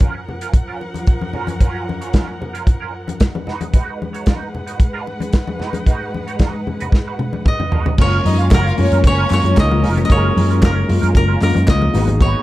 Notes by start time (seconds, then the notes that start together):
Already playing: F#2 F3 A#4 F#5
0.00 C#4 F4 A#4, kick, closed hi-hat, high conga
0.15 muted clean electric guitar stroke
0.28 muted clean electric guitar stroke, low conga
0.41 C#4 F4 A#4, closed hi-hat
0.54 muted clean electric guitar stroke, kick, closed hi-hat
0.68 C#4 F4 A#4
0.81 muted clean electric guitar stroke, muted conga
0.94 muted clean electric guitar stroke, closed hi-hat, high conga
1.07 muted clean electric guitar stroke, kick, closed hi-hat, muted conga
1.21 muted clean electric guitar stroke, high conga
1.33 C#4 F4 A#4, muted conga, low conga
1.47 muted clean electric guitar stroke, closed hi-hat, high conga
1.60 C#4 F4 A#4, kick, closed hi-hat, muted conga
1.87 muted clean electric guitar stroke, high conga
2.01 C#4 F4 C#5, closed hi-hat
2.13 C#4 F4 A#4, kick, snare, closed hi-hat, high conga
2.28 muted clean electric guitar stroke
2.40 muted clean electric guitar stroke, muted conga, low conga
2.53 C#4 F4 A#4, closed hi-hat
2.66 muted clean electric guitar stroke, kick, closed hi-hat, muted conga
2.80 C#4 F4 A#4
2.93 muted clean electric guitar stroke
3.07 muted clean electric guitar stroke, closed hi-hat, high conga
3.20 kick, snare, closed hi-hat
3.35 muted clean electric guitar stroke, high conga
3.47 G#2 G#3 D#4 F#4 B4 F#5, snare, muted conga, low conga
3.61 muted clean electric guitar stroke, closed hi-hat, high conga
3.73 D#4 F#4 B4, kick, closed hi-hat, muted conga
4.00 muted clean electric guitar stroke, muted conga, high conga
4.13 D#4 F#4 C#5, closed hi-hat
4.26 D#4 F#4 B4, kick, snare, closed hi-hat, high conga
4.40 muted clean electric guitar stroke
4.53 muted clean electric guitar stroke, muted conga, low conga
4.67 D#4 F#4 B4, closed hi-hat
4.79 muted clean electric guitar stroke, kick, closed hi-hat, muted conga
4.93 D#4 F#4 B4
5.07 muted clean electric guitar stroke, muted conga
5.20 muted clean electric guitar stroke, closed hi-hat, high conga
5.33 kick, snare, closed hi-hat, muted conga
5.47 muted clean electric guitar stroke, high conga
5.59 D#4 F#4 B4, snare, muted conga, low conga
5.73 muted clean electric guitar stroke, closed hi-hat, high conga
5.86 D#4 F#4 B4, kick, closed hi-hat, muted conga
6.13 muted clean electric guitar stroke, high conga
6.27 D#4 F#4 C#5, closed hi-hat
6.39 D#4 F#4 B4, kick, snare, closed hi-hat, muted conga, high conga
6.53 muted clean electric guitar stroke
6.66 muted clean electric guitar stroke, high conga, low conga
6.80 D#4 F#4 B4, closed hi-hat, low conga
6.92 muted clean electric guitar stroke, kick, snare, muted conga
7.07 D#4 F#4 B4
7.19 muted clean electric guitar stroke, high tom, muted conga
7.33 muted clean electric guitar stroke, high conga
7.45 D#5, muted clean electric guitar stroke, kick, mid tom, muted conga
7.60 muted clean electric guitar stroke, mid tom, high conga
7.72 D#4 F#4 B4, floor tom, muted conga, low conga
7.86 muted clean electric guitar stroke, floor tom, high conga
7.98 F#1 F#3 G#3 A#3 C#4 F4 A#4 C#5, kick, crash, muted conga
8.25 F#2 D#4 D#5, muted clean electric guitar stroke, open hi-hat, muted conga, high conga
8.38 C#4 F4 C#5 F5, closed hi-hat
8.50 F#1 C#4 F4 F#4 A#4 F#5, kick, snare, clap, closed hi-hat, muted conga, high conga
8.54 A#4
8.66 F4 F5, muted clean electric guitar stroke
8.77 F#2 G#3 A3 C#4 F4 C#5, muted clean electric guitar stroke, open hi-hat, muted conga, low conga
8.84 A#3
8.92 F#2 C#4 F4 A#4, closed hi-hat
9.04 F#1 C#4 C#5, muted clean electric guitar stroke, kick, closed hi-hat
9.18 C#4 F4 A#4
9.29 F#2 G#3 A#3 C#4 F4, muted clean electric guitar stroke, clap, open hi-hat
9.33 C#5
9.44 F#2, muted clean electric guitar stroke, closed hi-hat, high conga
9.56 C#2 G#3 A#3 C#4 D#4 D#5, kick, snare, clap, closed hi-hat, muted conga
9.64 F4
9.71 muted clean electric guitar stroke, high conga
9.83 F1 C#4 F4 A#4, snare, open hi-hat, muted conga, low conga
9.97 muted clean electric guitar stroke, closed hi-hat, high conga
10.05 G#3 A#3 D#5
10.09 F#1 C#4 F4 F#4 A#4 C#5, kick, closed hi-hat, muted conga
10.16 G#4
10.36 F#2, muted clean electric guitar stroke, open hi-hat, high conga
10.49 C#4 F4 C#5, closed hi-hat
10.62 F#1 C#4 F4 A#4, kick, snare, clap, closed hi-hat, muted conga, high conga
10.75 muted clean electric guitar stroke
10.87 F#2 G#3 A#3 C#4 F4, muted clean electric guitar stroke, open hi-hat, muted conga, low conga
11.01 F#2 C#4 F4 A#4, closed hi-hat
11.14 F#1 A#4, muted clean electric guitar stroke, kick, closed hi-hat, muted conga
11.28 C#4 F4 A#4
11.41 F#2 G#3 A#3 C#4 F4 A#4, muted clean electric guitar stroke, clap, open hi-hat, muted conga
11.54 F#2, muted clean electric guitar stroke, closed hi-hat, high conga
11.67 C#2 G#3 A#3 C#4 F4 D#5, muted clean electric guitar stroke, kick, snare, clap, closed hi-hat
11.81 muted clean electric guitar stroke, high conga
11.93 G#1 F#3 G#3 A#3 B3 D#4 F#4 G#4 B4, snare, open hi-hat, muted conga, low conga
12.08 muted clean electric guitar stroke, closed hi-hat, high conga
12.20 D#4 F#4 B4 C#5, kick, closed hi-hat, muted conga